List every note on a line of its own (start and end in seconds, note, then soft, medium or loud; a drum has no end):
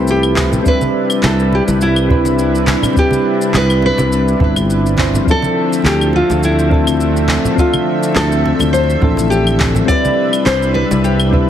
0.00 0.58 C2 loud
0.00 0.62 F3 medium
0.00 0.68 A3 loud
0.00 0.61 C4 medium
0.00 0.64 C4 medium
0.00 0.67 E4 medium
0.00 5.23 E4 medium
0.00 0.61 G4 medium
0.00 0.68 G4 medium
0.00 0.62 A4 medium
0.00 0.67 B4 loud
0.08 0.51 G4 loud
0.08 shaker medium
0.23 claves medium
0.23 shaker soft
0.36 kick medium
0.36 clap medium
0.36 muted conga medium
0.36 high conga loud
0.52 low conga loud
0.52 shaker medium
0.62 5.23 C3 medium
0.62 2.05 G3 loud
0.62 5.23 G3 medium
0.62 2.06 C4 loud
0.62 2.07 D4 medium
0.62 5.23 D4 medium
0.62 5.23 B4 medium
0.62 kick loud
0.62 shaker medium
0.67 2.07 E4 medium
0.67 1.20 B4 loud
0.67 2.08 B4 loud
0.81 high conga medium
0.81 shaker soft
1.10 claves medium
1.10 shaker medium
1.23 1.59 C2 medium
1.23 1.54 A4 medium
1.23 clap medium
1.23 high conga medium
1.23 shaker medium
1.40 shaker soft
1.52 1.62 G4 medium
1.52 muted conga soft
1.68 2.75 C2 medium
1.68 muted conga medium
1.68 high conga loud
1.68 shaker medium
1.81 2.64 E4 medium
1.81 shaker medium
1.96 claves medium
1.96 shaker soft
2.08 2.24 G3 loud
2.08 2.25 C4 loud
2.08 2.25 D4 medium
2.08 2.26 E4 medium
2.08 2.26 B4 loud
2.08 kick loud
2.08 high conga medium
2.08 low conga medium
2.25 muted conga medium
2.25 shaker medium
2.39 shaker medium
2.55 shaker soft
2.67 clap medium
2.67 muted conga soft
2.67 high conga loud
2.83 low conga loud
2.83 claves medium
2.83 shaker medium
2.93 4.36 G3 loud
2.93 4.37 C4 medium
2.93 4.37 D4 medium
2.93 kick loud
2.93 shaker medium
2.98 4.38 E4 loud
2.98 3.57 G4 medium
2.98 4.39 B4 loud
3.11 high conga medium
3.11 shaker soft
3.42 shaker medium
3.54 3.90 C2 loud
3.54 3.85 B4 loud
3.54 clap medium
3.54 high conga medium
3.54 shaker medium
3.70 claves medium
3.70 shaker soft
3.82 4.96 B4 medium
3.82 muted conga soft
3.98 4.33 C2 medium
3.98 muted conga medium
3.98 high conga medium
3.98 shaker medium
4.12 shaker medium
4.28 shaker soft
4.39 5.20 G1 loud
4.39 4.94 G3 medium
4.39 4.95 C4 medium
4.39 4.95 D4 medium
4.39 4.95 E4 medium
4.39 4.96 B4 medium
4.39 kick loud
4.39 high conga medium
4.39 low conga medium
4.56 muted conga medium
4.56 claves medium
4.56 shaker medium
4.70 shaker medium
4.86 shaker soft
4.97 5.24 G3 medium
4.97 5.24 C4 medium
4.97 5.24 D4 medium
4.97 5.25 E4 medium
4.97 5.25 C5 medium
4.97 kick medium
4.97 clap medium
4.97 muted conga soft
4.97 high conga medium
5.13 low conga loud
5.13 shaker medium
5.25 9.85 D3 medium
5.25 6.67 F3 loud
5.25 9.85 F3 medium
5.25 9.85 A3 medium
5.25 6.68 C4 medium
5.25 9.85 C4 medium
5.25 6.68 D4 medium
5.25 11.50 E5 medium
5.25 kick loud
5.25 shaker medium
5.29 6.69 E4 medium
5.29 6.70 A4 loud
5.29 5.88 A4 loud
5.42 high conga medium
5.42 shaker soft
5.73 shaker medium
5.84 6.21 D2 loud
5.84 6.15 G4 medium
5.84 clap medium
5.84 high conga medium
5.84 shaker medium
6.01 claves medium
6.01 shaker soft
6.13 6.44 F4 medium
6.13 muted conga soft
6.30 7.36 D2 medium
6.30 muted conga medium
6.30 high conga medium
6.30 shaker medium
6.43 7.26 E4 medium
6.43 shaker medium
6.59 shaker soft
6.69 6.86 F3 loud
6.69 6.86 C4 medium
6.69 6.87 D4 medium
6.69 6.87 E4 medium
6.69 6.87 A4 loud
6.69 kick loud
6.69 high conga medium
6.69 low conga medium
6.87 muted conga medium
6.87 claves medium
6.87 shaker medium
7.01 shaker medium
7.17 shaker soft
7.28 clap medium
7.28 muted conga soft
7.28 high conga medium
7.45 low conga loud
7.45 shaker medium
7.55 8.98 F3 loud
7.55 8.98 C4 loud
7.55 8.99 D4 loud
7.55 kick loud
7.55 shaker medium
7.59 8.12 F4 medium
7.59 9.00 A4 loud
7.59 9.00 E5 medium
7.73 high conga medium
7.73 claves medium
7.73 shaker soft
8.03 shaker medium
8.15 8.51 D2 medium
8.15 8.69 A4 medium
8.15 clap medium
8.15 high conga medium
8.15 shaker medium
8.32 shaker soft
8.46 muted conga medium
8.59 8.95 D2 medium
8.59 muted conga medium
8.59 high conga medium
8.59 claves medium
8.59 shaker medium
8.73 9.27 C5 loud
8.73 shaker medium
8.90 shaker soft
9.01 9.81 A1 loud
9.01 9.17 F3 loud
9.01 9.17 C4 medium
9.01 9.18 D4 medium
9.01 9.18 E4 medium
9.01 9.18 A4 loud
9.01 kick loud
9.01 high conga medium
9.01 low conga medium
9.17 muted conga medium
9.17 shaker medium
9.30 9.72 G4 loud
9.30 shaker medium
9.47 claves medium
9.47 shaker soft
9.59 kick medium
9.59 clap medium
9.59 muted conga medium
9.59 high conga loud
9.75 low conga loud
9.75 shaker medium
9.85 11.50 C3 medium
9.85 11.28 G3 loud
9.85 11.50 G3 medium
9.85 11.29 C4 medium
9.85 11.29 D4 medium
9.85 11.50 D4 medium
9.85 11.50 B4 medium
9.85 10.46 D5 loud
9.85 kick loud
9.85 shaker medium
9.90 11.30 E4 medium
9.90 11.31 B4 loud
10.05 high conga medium
10.05 shaker soft
10.33 claves medium
10.33 shaker medium
10.46 10.82 C2 medium
10.46 10.74 C5 loud
10.46 clap medium
10.46 high conga medium
10.46 shaker medium
10.63 shaker soft
10.74 11.01 B4 medium
10.74 muted conga medium
10.91 11.50 C2 medium
10.91 muted conga medium
10.91 high conga medium
10.91 shaker medium
11.04 11.50 G4 medium
11.04 shaker medium
11.20 claves medium
11.20 shaker soft
11.31 11.47 G3 loud
11.31 11.48 C4 medium
11.31 11.48 D4 loud
11.31 11.48 E4 medium
11.31 11.49 B4 loud
11.31 kick loud
11.31 high conga medium
11.31 low conga medium